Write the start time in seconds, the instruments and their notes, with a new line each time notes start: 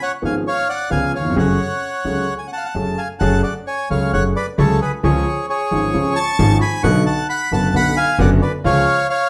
0.02 bandoneon C#5 F#5
0.22 grand piano G#1 G#2 F3 B3 C#4 G#4, upright bass G#1, bandoneon F5 G#5
0.47 bandoneon C#5 F5
0.69 bandoneon D5 F#5
0.90 grand piano C#2 C#3 F3 B3 C#4 G#4, upright bass C#2, bandoneon F5 G#5
1.15 bandoneon C#5 F5
1.19 grand piano D#2
1.25 grand piano E2
1.30 grand piano F2
1.36 upright bass F#1, grand piano F#2 F#3 A3 C#4 G#4, bandoneon C#5 F#5
2.05 upright bass C#2, grand piano C#2 C#3 F#3 A3 C#4 G#4
2.38 bandoneon G#5
2.47 bandoneon F#5
2.52 bandoneon F#5 A5
2.57 bandoneon F5
2.65 bandoneon F#5
2.75 upright bass F#1, grand piano F#2 F#3 A3 C#4 G#4
2.98 bandoneon F5 G#5
3.19 upright bass F#1, grand piano F#2 F#3 A3 C#4 G#4, bandoneon F#5 A5
3.43 bandoneon D5 F#5
3.67 bandoneon C#5 G#5
3.90 upright bass C#2, grand piano C#2 C#3 F#3 A3 C#4 G#4, bandoneon C#5 F5
4.13 upright bass F#1, grand piano F#2 F#3 A3 C#4 G#4, bandoneon C#5 F#5
4.36 bandoneon B4 D5
4.58 grand piano C#2 C#3 F#3 A3 C#4 G#4, upright bass C#2, bandoneon A4 C#5
4.81 bandoneon G#4 B4
5.03 grand piano C#2 C#3 F3 G#3 C#4 G#4, upright bass C#2, bandoneon G#4 C#5
5.50 bandoneon G#4 C#5
5.71 grand piano G#1 G#2 F3 G#3 C#4 G#4, upright bass G#1
5.93 grand piano C#2 C#3 F3 G#3 C#4 G#4, upright bass C#2
6.16 bandoneon A5 C#6
6.39 grand piano G#1 G#2 F3 G#3 C#4 G#4, upright bass G#1
6.61 bandoneon G#5 B5
6.83 grand piano B1 B2 D3 F#3 B3 F#4, upright bass B1, bandoneon F#5 C#6
7.06 bandoneon F#5 A5
7.29 bandoneon F#5 B5
7.52 upright bass F#1, grand piano F#1 F#2 D3 F#3 B3 F#4, bandoneon F#5 A5
7.74 upright bass B1, grand piano B1 B2 D3 F#3 B3 F#4, bandoneon F#5 B5
7.97 bandoneon F5 G#5
8.19 upright bass F#1, grand piano F#1 F#2 D3 F#3 B3 F#4, bandoneon D5 F#5
8.42 bandoneon B4 D5
8.64 grand piano C#2 C#3 F3 G#3 F4, upright bass C#2, bandoneon C#5 F5
9.10 bandoneon C#5 F5